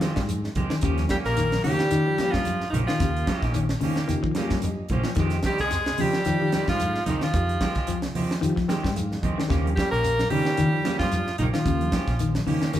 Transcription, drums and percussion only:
0.01 snare medium
0.01 closed hi-hat medium
0.01 high conga loud
0.01 shekere soft
0.16 kick medium
0.16 snare medium
0.16 closed hi-hat soft
0.29 closed hi-hat medium
0.29 high conga medium
0.29 shekere medium
0.44 snare soft
0.55 kick medium
0.55 closed hi-hat medium
0.55 high conga medium
0.55 low conga medium
0.55 shekere soft
0.70 snare medium
0.81 kick loud
0.81 closed hi-hat medium
0.81 shekere medium
0.98 snare soft
0.98 closed hi-hat soft
0.98 high conga medium
1.09 kick medium
1.09 snare medium
1.09 closed hi-hat medium
1.09 high conga loud
1.09 shekere soft
1.25 snare soft
1.25 closed hi-hat soft
1.37 closed hi-hat medium
1.37 shekere medium
1.52 snare medium
1.52 closed hi-hat soft
1.52 high conga medium
1.64 open hi-hat medium
1.64 low conga medium
1.64 shekere soft
1.79 snare medium
1.79 closed hi-hat soft
1.91 closed hi-hat medium
1.91 shekere medium
2.18 snare medium
2.18 closed hi-hat medium
2.18 high conga medium
2.18 shekere soft
2.34 kick medium
2.34 snare medium
2.45 closed hi-hat medium
2.45 high conga medium
2.45 shekere medium
2.61 snare soft
2.73 closed hi-hat medium
2.73 high conga medium
2.73 low conga medium
2.73 shekere soft
2.88 snare medium
2.88 closed hi-hat soft
3.00 kick loud
3.00 snare soft
3.00 closed hi-hat medium
3.00 shekere medium
3.16 closed hi-hat soft
3.27 kick medium
3.27 snare medium
3.27 closed hi-hat medium
3.27 high conga loud
3.27 shekere soft
3.42 kick medium
3.42 snare soft
3.42 closed hi-hat soft
3.54 closed hi-hat medium
3.54 shekere medium
3.69 snare medium
3.69 closed hi-hat soft
3.81 open hi-hat medium
3.81 low conga medium
3.81 shekere soft
3.96 snare medium
3.96 closed hi-hat soft
4.09 closed hi-hat medium
4.09 low conga medium
4.09 shekere medium
4.24 kick medium
4.35 snare medium
4.35 closed hi-hat medium
4.35 high conga loud
4.35 shekere soft
4.50 kick medium
4.50 snare medium
4.50 closed hi-hat soft
4.62 closed hi-hat medium
4.62 high conga medium
4.62 shekere medium
4.89 kick medium
4.89 closed hi-hat medium
4.89 high conga medium
4.89 low conga medium
4.89 shekere soft
5.04 snare medium
5.15 kick loud
5.15 snare soft
5.15 closed hi-hat medium
5.15 shekere medium
5.30 snare soft
5.30 closed hi-hat soft
5.43 kick medium
5.43 snare medium
5.43 closed hi-hat medium
5.43 high conga loud
5.43 shekere soft
5.58 snare soft
5.58 closed hi-hat soft
5.71 snare soft
5.71 closed hi-hat medium
5.71 shekere medium
5.86 snare medium
5.86 closed hi-hat soft
5.98 open hi-hat medium
5.98 low conga medium
5.98 shekere soft
6.13 snare medium
6.25 closed hi-hat medium
6.25 shekere loud
6.52 snare medium
6.52 closed hi-hat medium
6.52 high conga loud
6.52 shekere soft
6.68 kick medium
6.68 snare medium
6.80 closed hi-hat medium
6.80 high conga medium
6.80 shekere medium
6.95 snare soft
7.06 snare soft
7.06 closed hi-hat medium
7.06 high conga medium
7.06 low conga medium
7.06 shekere soft
7.21 snare medium
7.21 closed hi-hat soft
7.34 kick medium
7.34 closed hi-hat medium
7.34 shekere medium
7.49 closed hi-hat soft
7.61 kick medium
7.61 snare medium
7.61 closed hi-hat medium
7.61 high conga loud
7.61 shekere soft
7.75 kick medium
7.75 snare soft
7.75 closed hi-hat soft
7.87 closed hi-hat medium
7.87 shekere medium
8.02 snare medium
8.02 closed hi-hat soft
8.15 open hi-hat medium
8.15 low conga medium
8.15 shekere soft
8.31 snare medium
8.31 closed hi-hat soft
8.43 closed hi-hat medium
8.43 shekere medium
8.57 kick medium
8.57 snare soft
8.69 snare medium
8.69 closed hi-hat medium
8.69 high conga loud
8.69 shekere soft
8.84 kick medium
8.84 snare medium
8.84 closed hi-hat soft
8.96 closed hi-hat medium
8.96 high conga medium
8.96 shekere medium
9.12 snare soft
9.12 high conga medium
9.23 kick medium
9.23 closed hi-hat soft
9.23 high conga medium
9.23 low conga medium
9.23 shekere soft
9.40 snare medium
9.50 kick medium
9.50 snare soft
9.50 closed hi-hat medium
9.50 shekere medium
9.66 closed hi-hat soft
9.66 high conga medium
9.77 kick medium
9.77 snare medium
9.77 closed hi-hat medium
9.77 high conga medium
9.77 shekere soft
9.94 closed hi-hat soft
10.04 snare soft
10.04 closed hi-hat medium
10.04 shekere medium
10.19 snare medium
10.19 closed hi-hat soft
10.19 high conga medium
10.30 open hi-hat medium
10.30 low conga medium
10.30 shekere soft
10.45 snare medium
10.57 closed hi-hat medium
10.57 low conga medium
10.57 shekere medium
10.85 snare medium
10.85 closed hi-hat medium
10.85 high conga loud
10.85 shekere soft
11.00 kick medium
11.00 snare medium
11.12 closed hi-hat medium
11.12 high conga medium
11.12 shekere medium
11.27 snare soft
11.38 closed hi-hat medium
11.38 high conga medium
11.38 low conga medium
11.38 shekere soft
11.54 snare medium
11.54 closed hi-hat soft
11.66 kick medium
11.66 closed hi-hat medium
11.66 shekere medium
11.81 closed hi-hat soft
11.81 high conga medium
11.92 kick medium
11.92 snare medium
11.92 closed hi-hat medium
11.92 high conga loud
11.92 shekere soft
12.07 kick medium
12.07 snare soft
12.07 closed hi-hat soft
12.19 closed hi-hat medium
12.19 shekere medium
12.35 snare medium
12.35 closed hi-hat soft
12.35 high conga medium
12.47 open hi-hat medium
12.47 low conga medium
12.47 shekere soft
12.62 snare medium
12.62 closed hi-hat soft
12.73 closed hi-hat medium
12.73 shekere medium

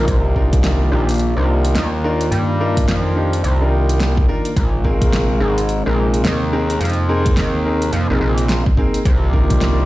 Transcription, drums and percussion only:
0.08 kick loud
0.08 closed hi-hat medium
0.36 kick medium
0.53 kick loud
0.53 closed hi-hat medium
0.64 snare loud
0.64 closed hi-hat medium
1.09 closed hi-hat medium
1.11 closed hi-hat medium
1.14 closed hi-hat soft
1.16 closed hi-hat soft
1.18 closed hi-hat soft
1.19 closed hi-hat medium
1.65 closed hi-hat medium
1.75 snare loud
1.75 closed hi-hat medium
2.21 closed hi-hat medium
2.32 closed hi-hat medium
2.77 kick loud
2.77 closed hi-hat medium
2.88 snare loud
2.88 closed hi-hat medium
3.33 closed hi-hat medium
3.44 closed hi-hat medium
3.89 closed hi-hat medium
4.00 snare loud
4.00 closed hi-hat medium
4.17 kick loud
4.45 closed hi-hat medium
4.56 kick loud
4.56 closed hi-hat medium
4.85 kick medium
5.02 kick loud
5.02 closed hi-hat medium
5.13 snare loud
5.13 closed hi-hat medium
5.58 closed hi-hat medium
5.69 closed hi-hat medium
6.14 closed hi-hat medium
6.25 snare loud
6.25 closed hi-hat medium
6.70 closed hi-hat medium
6.81 closed hi-hat soft
6.85 closed hi-hat soft
6.89 closed hi-hat soft
6.93 closed hi-hat soft
7.26 kick loud
7.26 closed hi-hat medium
7.37 snare loud
7.37 closed hi-hat soft
7.82 closed hi-hat medium
7.93 closed hi-hat soft
8.38 closed hi-hat medium
8.49 snare loud
8.49 closed hi-hat soft
8.66 kick loud
8.77 kick medium
8.94 closed hi-hat medium
9.05 kick loud
9.05 closed hi-hat soft
9.33 kick medium
9.50 kick loud
9.50 closed hi-hat medium
9.61 snare loud
9.61 closed hi-hat soft

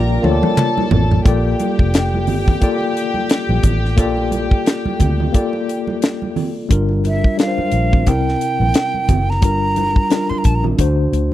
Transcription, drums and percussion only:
0.24 high tom medium
0.43 high tom medium
0.43 high conga medium
0.57 clap medium
0.57 mid tom medium
0.78 muted conga soft
0.78 high conga medium
0.91 floor tom loud
0.91 low conga medium
1.11 floor tom medium
1.11 high conga medium
1.26 kick loud
1.26 closed hi-hat medium
1.26 muted conga soft
1.60 closed hi-hat medium
1.60 high conga medium
1.79 kick medium
1.94 snare loud
1.94 closed hi-hat medium
1.94 muted conga soft
2.14 high conga medium
2.27 open hi-hat medium
2.27 low conga medium
2.48 kick medium
2.48 low conga medium
2.62 kick medium
2.62 closed hi-hat medium
2.62 muted conga soft
2.81 muted conga soft
2.97 closed hi-hat medium
3.14 high conga medium
3.29 snare medium
3.29 closed hi-hat medium
3.29 muted conga soft
3.49 muted conga soft
3.49 high conga medium
3.63 kick medium
3.63 closed hi-hat medium
3.63 low conga medium
3.85 snare soft
3.98 kick loud
3.98 closed hi-hat medium
4.17 muted conga soft
4.31 closed hi-hat medium
4.31 high conga medium
4.51 kick medium
4.66 snare loud
4.66 closed hi-hat medium
4.86 muted conga soft
4.86 high conga medium
4.99 kick medium
4.99 closed hi-hat medium
4.99 low conga medium
5.20 low conga medium
5.34 kick medium
5.34 closed hi-hat medium
5.34 muted conga soft
5.53 muted conga soft
5.69 closed hi-hat medium
5.87 high conga medium
6.02 snare medium
6.02 closed hi-hat medium
6.22 muted conga soft
6.22 high conga medium
6.36 open hi-hat soft
6.36 low conga medium
6.71 kick loud
6.71 closed hi-hat medium
6.71 muted conga soft
6.89 muted conga soft
7.04 closed hi-hat medium
7.04 high conga medium
7.24 kick medium
7.39 snare loud
7.39 closed hi-hat medium
7.58 muted conga soft
7.58 high conga medium
7.72 closed hi-hat medium
7.93 kick medium
7.93 low conga medium
8.07 kick medium
8.07 closed hi-hat medium
8.28 snare soft
8.41 closed hi-hat medium
8.61 high conga medium
8.74 snare loud
8.74 closed hi-hat medium
8.94 high conga medium
9.09 kick medium
9.09 closed hi-hat medium
9.09 low conga medium
9.31 snare soft
9.42 kick loud
9.42 closed hi-hat medium
9.76 closed hi-hat medium
9.76 high conga medium
9.96 kick medium
10.10 snare loud
10.10 closed hi-hat medium
10.10 muted conga soft
10.30 high conga medium
10.44 kick medium
10.44 closed hi-hat medium
10.64 low conga medium
10.78 kick medium
10.78 closed hi-hat medium
10.78 muted conga soft
11.13 closed hi-hat medium

